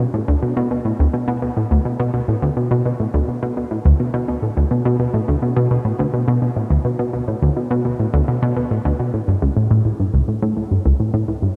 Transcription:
synth arpeggio sound
0.14 A2
0.28 D2
0.42 B2
0.57 B2
0.71 B2
0.85 A2
0.99 D2
1.14 B2
1.28 B2
1.42 B2
1.57 A2
1.71 D2
1.85 B2
2.00 B2
2.14 B2
2.28 A2
2.42 D2
2.57 B2
2.71 B2
2.85 B2
3.00 A2
3.14 D2
3.28 B2
3.43 B2
3.57 B2
3.71 A2
3.85 D2
4.00 B2
4.14 B2
4.28 B2
4.42 A2
4.57 D2
4.71 B2
4.85 B2
5.00 B2
5.14 A2
5.28 D2
5.42 B2
5.57 B2
5.71 B2
5.85 A2
5.99 D2
6.14 B2
6.28 B2
6.42 B2
6.56 A2
6.70 D2
6.85 B2
6.99 B2
7.13 B2
7.28 A2
7.42 D2
7.57 B2
7.71 B2
7.85 B2
7.99 A2
8.14 D2
8.28 B2
8.42 B2
8.57 B2
8.71 A2
8.85 D2
8.99 B2
9.14 A2
9.28 G2
9.42 C#2
9.56 A2
9.71 A2
9.85 A2
10.00 G2
10.14 C#2
10.28 A2
10.42 A2
10.57 A2
10.71 G2
10.85 C#2
11.00 A2
11.14 A2
11.28 A2
11.42 G2

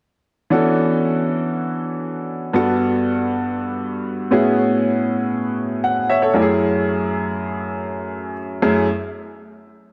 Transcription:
grand piano
0.50 E3 B3 C#4 D4 F#4 A4
2.53 G2 B3 D4 F#4 A4
4.31 A2 B3 C#4 E4 F#4 G#4
5.84 F#5
6.09 C#5 E5
6.22 A4 C#5
6.34 F#2 A3 C#4 E4 G4
6.42 G#4
8.62 F#2 A3 C#4 E4 G#4

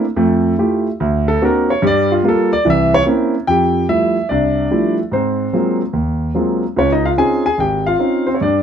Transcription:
grand piano
0.16 F2 A3
0.58 A3 E4 F4 G4
1.00 D2
1.28 A4
1.41 A#3 C4 D4 F#4 A#4
1.70 C#5
1.82 G2 G3
1.87 D5
2.12 F4
2.24 G3 A#3 F4
2.28 A4
2.53 D5
2.65 C2 E3
2.70 E5
2.94 C#5
3.06 A#3 C4 C#4 E4
3.47 F2 G4 G5
3.89 F3 G3 A3 E4 E5
4.29 C2 D4 D5
4.71 F3 G3 A3 E4
5.12 G#2 C4 C5
5.53 F#3 G#3 A#3 C4 F4
5.93 D#2
6.34 F#3 G#3 A#3 C4 F4
6.76 C#2 C#4 C#5
6.92 D#4 D#5
7.05 F4 F5
7.17 C4 C#4 D#4 F4 G#4 G#5
7.46 G#4 G#5
7.58 G#1 G4 G5
7.86 F4 F5
7.99 C4 C#4 D#4 F4
8.27 C4 C5
8.35 C#5
8.41 G2 D4 D5

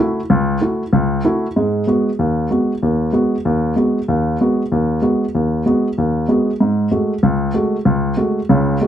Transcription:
grand piano
0.00 A3 E4 F#4
0.30 C#2
0.61 A3 E4 F#4
0.93 C#2
1.24 A3 E4 F#4
1.56 G#2 G#3
1.87 G#3 B3 F#4
2.19 D#2
2.50 G#3 B3 F#4
2.83 D#2
3.13 G#3 B3 F#4
3.45 D#2
3.76 G#3 B3 F#4
4.08 D#2
4.41 G#3 B3 F#4
4.72 D#2
5.02 G#3 B3 F#4
5.35 D#2
5.66 G#3 B3 F#4
5.98 D#2
6.29 G#3 B3 F#4
6.61 G#2
6.91 G#3 A3 F#4
7.23 C#2
7.54 G#3 A3 F#4
7.85 C#2
8.17 G#3 A3 F#4
8.49 C#2 C#3
8.81 G#3 A3 F#4

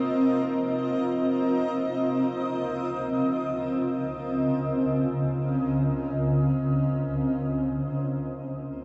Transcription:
ambient pad
Already playing: C4 F4 A#4 D#5
1.46 C#3
8.05 A#3

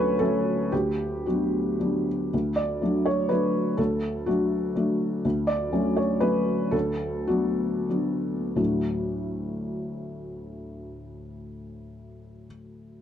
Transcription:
felt piano
Already playing: D2 F#3 A3 C#4 A4 B4 C#5
0.19 F#3 A3 C#4 A4
0.72 D2 G4
1.26 F#3 B3 D4 F#4
1.80 F#3 B3 D4
2.33 D2
2.56 D5
2.82 F#3 A3 D4
3.05 C#5
3.29 F#3 A3 D4 B4
3.77 D2 A4
4.26 F#3 A3 D4 F#4
4.76 F#3 A3 D4
5.25 D2
5.47 D5
5.72 F#3 A3 C#4
5.97 C#5
6.20 F#3 A3 C#4 B4
6.71 D2 A4
7.27 F#3 B3 D4 F#4
7.89 F#3 B3 D4
8.56 D2 A2 F#3 A3 D4 F#4

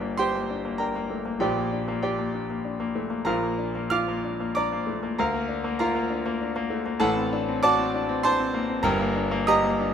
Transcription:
grand piano
Already playing: G1 G2 D4 G4 D5 G5
0.00 A#3
0.18 G4 C5 G5 C6
0.35 A#3
0.50 D4
0.65 A#3
0.78 D4 A#4 G5 A#5
0.96 A#3
1.10 A3
1.25 A#3
1.40 A#1 A#2 G4 D5 G5
1.57 A#3
1.73 D4
1.88 A#3
2.03 G4 D5 G5
2.19 A#3
2.34 D4
2.50 A#3
2.65 D4
2.80 A#3
2.95 A3
3.10 A#3
3.25 A#1 A#2 A#4 F5 A#5
3.43 A#3
3.58 D4
3.75 A#3
3.90 F4 F5 D6 F6
4.08 A#3
4.24 D4
4.40 A#3
4.55 D4 D5 A#5 D6
4.73 A#3
4.87 A3
5.03 A#3
5.18 D2 A#4 F5 A#5
5.34 A#3
5.48 D4
5.64 A#3
5.79 F4 A#4 F5 A#5
5.95 A#3
6.10 D4
6.26 A#3
6.41 D4
6.56 A#3
6.70 A3
6.86 A#3
7.00 A1 A2 A4 F#5 A5
7.16 C4
7.33 D4
7.48 C4
7.63 F#4 D5 A5 D6
7.79 C4
7.95 D4
8.09 C4
8.23 D4 C5 A5 C6
8.40 C4
8.54 A#3
8.69 C4
8.83 G1 G2 A#4 G5 A#5
9.00 A#3
9.16 D4
9.31 A#3
9.47 G4 D#5 A#5 D#6
9.64 A#3
9.80 D4

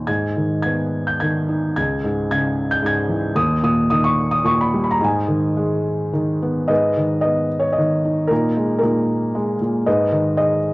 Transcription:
felt piano
0.07 G#2 G#6
0.37 D#3
0.63 B3 G#6
1.07 G6
1.20 D#3 G#6
1.49 D#4
1.76 C#2 G#6
2.04 G#2
2.31 C#3 G#6
2.71 G6
2.83 G#2 G#6
3.09 E3
3.35 D#2 D#6
3.63 A#2 D#6
3.90 D#3 D#6
4.04 C#6
4.31 D#6
4.44 A#2 C#6
4.61 B5
4.74 G3
4.84 B5
4.91 A#5
5.00 G#2 G#5
5.28 D#3
5.57 G#3
6.13 D#3
6.42 B3
6.68 G#2 B4 D#5
6.97 D#3
7.21 B3 D#5
7.59 C#5
7.73 D#5
7.78 D#3
8.05 D#4
8.28 A#2 A#4
8.33 D#4
8.57 G#3
8.79 A#4
8.83 A#2 D#4
9.35 G#3
9.61 A#2
9.86 G#2 B4 D#5
10.12 D#3
10.37 G#3 D#5

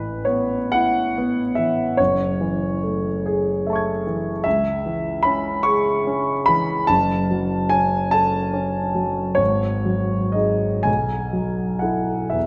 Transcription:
grand piano
Already playing: A1 E3 B4
0.25 B3 C#5
0.72 E4 F#5
1.18 B3
1.55 E3 E5
1.97 F#1 C#5
2.41 E3
2.84 A3
3.26 G#4
3.67 A3 E5 A5
3.73 C#6 G#6
4.07 E3
4.44 C#2 E5
4.86 E3
5.23 C#4 B5
5.63 G#4 C#6
6.07 C#4
6.46 E3 B5
6.87 F#1 A5
7.31 F#3
7.70 C#4 G#5
8.11 A4 A5
8.54 C#4
8.95 F#3
9.35 G#1 C#5
9.85 F#3
10.32 D#4 G#4 D#5
10.83 B1 G#5
11.33 F#3
11.79 E4 A4 F#5
12.30 E2 E5

